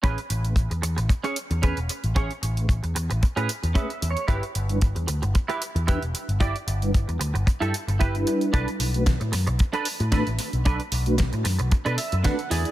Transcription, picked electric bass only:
X:1
M:4/4
L:1/16
Q:"Swing 16ths" 1/4=113
K:A
V:1 name="Picked electric bass" clef=bass
A,,, z A,,,3 E,, E,, A,,, z3 E,,2 E,,, z A,,, | z2 A,,,3 E,, E,, A,,, z A,, z E,, z2 E,, z | =G,,, z G,,,3 E,, D,, G,,, z3 E,,2 E,,, z G,,, | z2 =G,,,3 E,, D,, G,,, z =G,, z G,,,3 z2 |
B,,, z B,,,3 A,, F,, B,,, z3 A,,2 A,,, z B,,, | B,,, z B,,,3 A,, F,, B,,, z B,, z F,, z2 E,, z |]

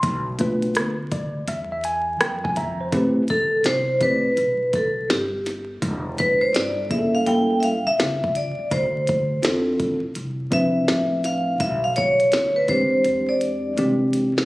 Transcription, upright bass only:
X:1
M:4/4
L:1/16
Q:"Swing 16ths" 1/4=83
K:Am
V:1 name="Upright bass" clef=bass
B,,,4 D,,4 E,,4 F,,4 | A,,,4 C,,3 z B,,,4 G,,,4 | E,,,4 G,,,3 z A,,,3 z ^C,,3 z | D,,4 E,,3 z C,,4 A,,,4 |
B,,,4 D,,3 z E,,4 ^B,,,4 |]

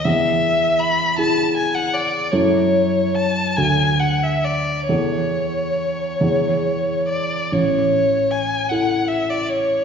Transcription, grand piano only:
X:1
M:6/8
L:1/8
Q:3/8=50
K:A
V:1 name="Grand piano"
E,,3 [EG]3 | [F,,EA]3 [D,,FA]3 | [E,,EA]3 [E,,EG]3 | A,,,3 [EA]3 |]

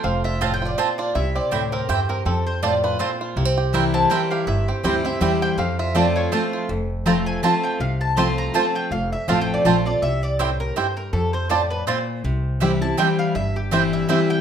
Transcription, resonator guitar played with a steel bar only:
X:1
M:3/4
L:1/16
Q:"Swing" 1/4=162
K:F
V:1 name="Resonator guitar played with a steel bar"
f2 e2 (3f2 g2 d2 c2 d2 | e2 d2 c2 B2 c2 B2 | A2 c2 d2 =B2 c4- | c4 z2 a2 g2 f2 |
e2 G2 c2 e2 e2 g2 | f2 e2 d2 _d2 c3 z | z4 b2 _a2 =a2 g2 | f2 a2 c'2 b2 a2 g2 |
f2 e2 (3f2 g2 d2 c2 d2 | e2 d2 c2 B2 c2 B2 | A2 c2 d2 =B2 c4- | c4 z2 a2 g2 f2 |
e2 G2 c2 e2 e2 g2 |]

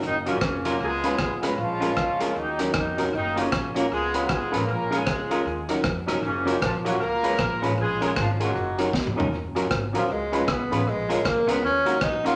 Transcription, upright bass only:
X:1
M:4/4
L:1/8
Q:"Swing" 1/4=155
K:F#
V:1 name="Upright bass" clef=bass
F,,,2 E,,,2 C,,2 B,,,2 | A,,,2 C,,2 D,,2 E,, E,,, | F,,,2 A,,,2 C,,2 B,,, =A,,, | A,,,2 C,,2 D,,2 E,, E,,, |
F,,,2 A,,,2 C,,2 A,,, =A,,, | A,,,2 G,,,2 F,,,2 C,,2 | F,,,2 G,,, A,,, C,,2 B,,, =A,,, | A,,,2 B,,, C,, D,,2 A,,,2 |]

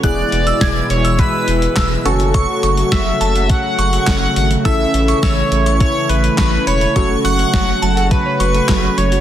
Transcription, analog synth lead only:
X:1
M:4/4
L:1/8
Q:1/4=104
K:F#m
V:1 name="Analog synth lead"
d3 c B3 z | z2 e2 f2 f f | e2 c2 c B B c | c f3 B3 c |]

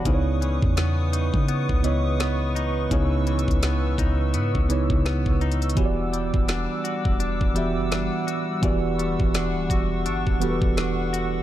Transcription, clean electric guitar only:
X:1
M:4/4
L:1/8
Q:"Swing 16ths" 1/4=84
K:C#dor
V:1 name="Clean electric guitar"
C, E, B, D B, E, B, D | C, E, B, D B, E, B, D | E, =G, =D F D G, D F | E, =G, =D F D G, D F |]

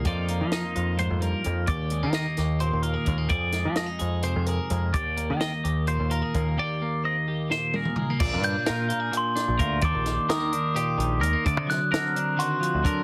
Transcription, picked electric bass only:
X:1
M:7/8
L:1/16
Q:1/4=129
K:Eb
V:1 name="Picked electric bass" clef=bass
F,,3 F,2 z F,,3 F,,2 z F,,2 | E,,3 E,2 z E,,3 E,,2 z E,,2 | F,,3 F,2 z F,,3 F,,2 z F,,2 | z3 E,2 z E,,3 E,,2 z E,,2 |
z12 z2 | B,,, G,,2 z B,,2 z4 z B,,, D,,2 | E,, B,,,2 z E,2 z4 B,,,2 E,, z | D,, C,2 z D,2 z4 z D,, D,2 |]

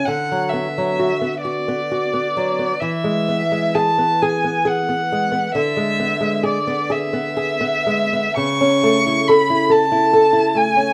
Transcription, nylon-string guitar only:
X:1
M:6/8
L:1/16
Q:3/8=44
K:Emix
V:1 name="Nylon-string guitar"
D, F, B, F, F B, F B, F B, F, B, | E, G, B, G, G B, G B, G B, G, B, | D, G, B, G, G B, G B, G B, G, B, | C, C A, E A E A E A E A, C |]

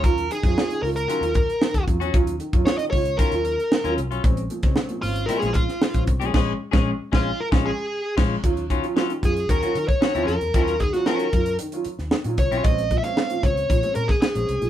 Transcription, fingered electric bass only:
X:1
M:4/4
L:1/16
Q:1/4=114
K:Ebdor
V:1 name="Fingered electric bass" clef=bass
E,,2 z G,, z2 D,,2 z E,,2 z2 E,, F,, _F,, | E,,2 z G,, z2 D,,2 z E,,2 z2 E,, C,, _C,, | B,,,2 z D,, z2 A,,,2 z B,,,2 z2 B,,, C,, _C,, | B,,,2 z B,,,2 z B,,,2 z B,,,2 z3 B,,,2 |
E,,3 z3 G,,2 E,, z E, z2 E,, F,, _F,, | E,,3 z3 G,,2 z3 E,, z B,, C,, _C,, | B,,,3 z3 D,,2 B,,, z B,, z2 B,,, C,, _C,, |]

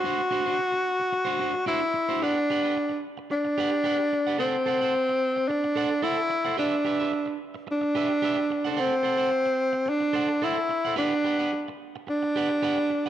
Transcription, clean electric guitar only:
X:1
M:4/4
L:1/16
Q:1/4=110
K:G
V:1 name="Clean electric guitar"
[DFc] z [DFc] [DFc] z4 z [DFc] [DFc] z [DFc] z2 [DFc] | [GBf] z [GBf] [GBf] z6 [GBf] z [GBf] z2 [GBf] | [Acf] z [Acf] [Acf] z6 [Acf] z [Acf] z2 [Acf] | [GBe] z [GBe] [GBe] z6 [GBe] z [GBe] z2 [Acf] |
[Acf] z [Acf] [Acf] z6 [Acf] z [Acf] z2 [Acf] | [GBf] z [GBf] [GBf] z6 [GBf] z [GBf] z2 f |]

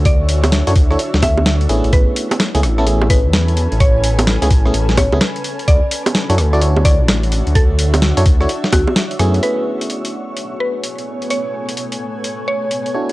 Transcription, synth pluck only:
X:1
M:4/4
L:1/8
Q:"Swing 16ths" 1/4=128
K:A
V:1 name="Synth pluck"
d z4 e z2 | B z4 B z2 | c z4 c z2 | d z4 d z2 |
A z4 F z2 | B z4 B z2 | c z4 c z2 |]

